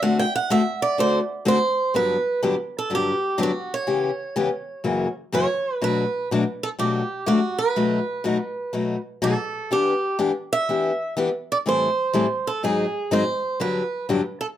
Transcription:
steel-string acoustic guitar
0.02 D3 A3 C4 F#4 A4 F#5
0.19 G5
0.36 F#5
0.50 D3 A3 C4 F#4 A4 E5
0.82 D5
0.98 D3 A3 C4 F#4 A4 C5
1.45 D3 A3 C4 F#4 A4 C5
1.94 G2 D3 F#3 B3 D4 G4 B4
2.43 G2 D3 F#3 B3 D4 G4
2.78 A4
2.90 G2 D3 F#3 B3 D4 G4
2.95 G4
3.38 G2 D3 F#3 B3 D4 G4
3.43 F#4
3.74 C#5
3.87 C#3 E3 B3 C#4 G4
4.36 C#3 E3 B3 C#4 G4
4.84 F#2 C#3 E3 A#3 C#4 F#4
5.32 F#2 C#3 E3 A#3 C#4 F#4 C#5
5.81 B2 F#3 A3 D4 F#4 B4
6.31 B2 F#3 A3 D4 F#4
6.63 A4
6.79 B2 F#3 A3 D4 F#4 G4
7.26 B2 F#3 A3 D4 F#4
7.59 B4
7.76 B2 F#3 A3 D#4 F#4
8.24 B2 F#3 A3 D#4 F#4
8.73 B2 F#3 A3 D#4 F#4
9.22 B2 F#3 A3 D#4 F#4 A4
9.71 E3 B3 D4 G4
10.19 E3 B3 D4 G4
10.53 E5
10.69 E3 B3 D4 G4
11.17 E3 B3 D4 G4
11.52 D5
11.66 A2 E3 G3 C4 E4 A4 C5
12.13 A2 E3 G3 C4 E4 A4
12.47 A4
12.63 G#2 D#3 F#3 C4 D#4 G#4
13.11 G#2 D#3 F#3 C4 D#4 G#4 C5
13.60 G2 D3 F#3 B3 D4 G4 B4
14.09 G2 D3 F#3 B3 D4 G4
14.41 A4

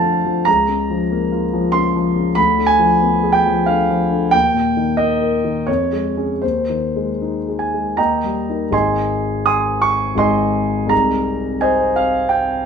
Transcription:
grand piano
Already playing: F2 D3 F3 A3 F4 F5 G5 A5
0.03 D3
0.25 F3
0.45 C#2 A#5
0.68 C#3
0.90 F3
1.11 A#3
1.32 F4
1.53 F3
1.72 C#3 C6
1.96 F3
2.16 C#3
2.35 D2 B5
2.58 D3
2.66 G#5
2.79 F3
3.02 B3
3.23 G#4
3.33 G5
3.46 F3
3.66 D3 F5
3.90 F3
4.11 D3
4.31 D#2 G5
4.54 A#2
4.77 D#3
4.97 A#3 D#5
5.21 A#4
5.44 D#3
5.67 F2 C#5
5.93 G#3
6.17 C#4 G#4
6.42 D#2 C5
6.69 D#3
6.96 G#3
7.22 D#4
7.48 G#4
7.59 G#5
7.74 G#3
7.97 D#2 D#5 G5 A#5
8.24 G3
8.49 D#4 A#4
8.70 G#1 G#3 D#4 G#4 D#5 G#5 C6
9.46 G#5 C6 D#6
9.82 C#6
10.15 G#1 G#3 D#4 G#4 C6
10.19 D#5 G#5
10.87 C2 G#3 D#4 G#4 A#5
11.61 C5 D#5 G#5
11.96 F5
12.29 G5

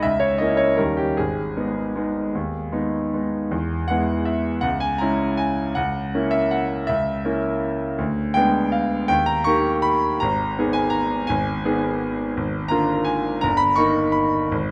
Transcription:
grand piano
0.03 C#2 E5
0.20 C#5
0.38 A#3 C#4 E4 D#5
0.57 C#5
0.77 D#2 G3 C#4 D#4 A#4
0.97 G4
1.17 G#1 G#4
1.56 G#3 B3 D#4
1.96 G#3 B3 D#4
2.35 D#2
2.72 G#3 B3 D#4
3.14 G#3 B3 D#4
3.51 E2
3.88 G#3 B3 E4 F#5
4.25 E5
4.61 C#2 F#5
4.80 G#5
4.98 G#3 C#4 E4 A#5
5.37 G#5
5.75 C#2 F#5
6.15 A#3 C#4 E4
6.31 E5
6.51 F#5
6.87 C#2 E5
7.25 A#3 C#4 E4
7.98 D2
8.34 G#3 B3 D4 G5
8.72 F5
9.08 D#2 G5
9.26 A#5
9.44 D#3 A#3 G4 C#6
9.82 B5
10.20 G#1 A#5
10.59 D#3 B3 G#4
10.73 G#5
10.90 A#5
11.27 G#1 G#5
11.65 D#3 B3 G#4
12.37 G#1
12.68 D3 A#3 F4 A#5
13.05 G#5
13.41 G1 A#5
13.57 B5
13.76 D#3 A#3 D#4 C#6
14.12 B5
14.52 G#1

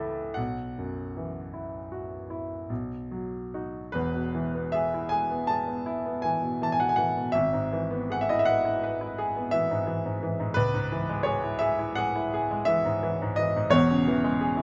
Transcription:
grand piano
Already playing: C#2 E3 E4 A4 E5
0.34 B1 F#5
0.78 F#2
1.17 E3
1.53 E4
1.92 F#4
2.30 E4
2.70 B1
3.11 F#3
3.54 D#4 F#4
3.92 E1 E2 B4
4.15 B2
4.35 E3
4.54 B3
4.72 G#4 E5
4.94 E4
5.09 G#4 G#5
5.31 B3
5.47 G#4 A5
5.68 B3
5.86 E4
6.06 B3
6.22 E3 G#5
6.42 B2
6.62 E3 A5
6.72 G#5
6.80 B2 F#5
6.89 G#5
6.96 E3 F#5
7.17 B2
7.32 G#1 E5
7.53 G#2
7.73 E3
7.91 B3
8.10 G#4 F#5
8.21 E5
8.29 E4 D#5
8.39 E5
8.45 B4 F#5
8.65 E4
8.83 B4
9.01 E4
9.18 G#4
9.36 B3
9.51 E3 E5
9.71 G#2
9.87 E3
10.05 G#2
10.23 E3
10.40 G#2
10.54 C#2 B4
10.74 G#2
10.92 E3
11.09 G#3
11.23 G#4 C#5
11.43 E4
11.59 G#4 E5
11.79 E4
11.95 G#4 F#5
12.15 E4
12.34 G#4
12.51 G#3
12.65 E3 E5
12.85 G#2
13.03 E3
13.22 G#2
13.36 E3 D#5
13.56 G#2
13.70 E1 E2 C#5
13.91 C#3
14.08 E3
14.24 G#3
14.41 G#4
14.57 E4

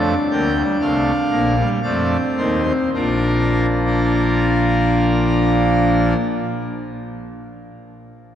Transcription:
pipe organ
Already playing: F2 F3 A3 D4 D5
0.31 D2 D3 A#3 G5
0.56 G3
0.80 C2 C3 A3 F5
1.30 A#1 A#2 A#3
1.56 G3
1.83 F2 F3 A3 C4 D5
2.37 D#2 D#3 A#3 C5
2.66 C4
2.94 A#1 A#2 F3 A#3 D4 F4 A#4

